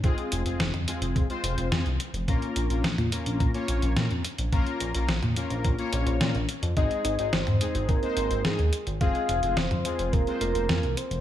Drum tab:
HH |xxxxxxxxxxxxxxxx|xxxxxxxxxxxxxxxx|xxxxxxxxxxxxxxxx|xxxxxxxxxxxxxxxx|
SD |----o-------o---|----o-------o---|----o-------o---|----o-------o---|
T2 |-----o----------|-----o----------|-----o----------|-----o----------|
BD |o-------o-------|o-------o-------|o-------o-------|o-------o-------|

HH |xxxxxxxxxxxxxxxx|
SD |----o-------o---|
T2 |-----o----------|
BD |o-------o-------|